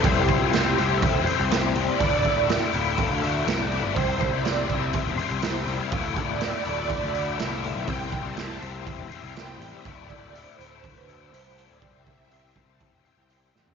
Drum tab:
HH |o-o-o-o-o-o-o-o-|o-o-o-o-o-o-o-o-|o-o-o-o-o-o-o-o-|o-o-o-o-o-o-o-o-|
SD |----o-------o---|----o-------o---|----o-------o---|----o-------o---|
FT |----------------|----------------|----------------|----------------|
BD |o-o-----o-------|o-o-----o-------|o-o---o-o-------|o-o-----o-------|

HH |o-o-o-o-o-o-o-o-|o-o-o-o-o-o-o-o-|o-o-o-o-o-o-o---|
SD |----o-------o---|----------------|--------------o-|
FT |----------------|----------------|---------------o|
BD |o-o-----o-------|o-o-----o-------|o-o---o-o-------|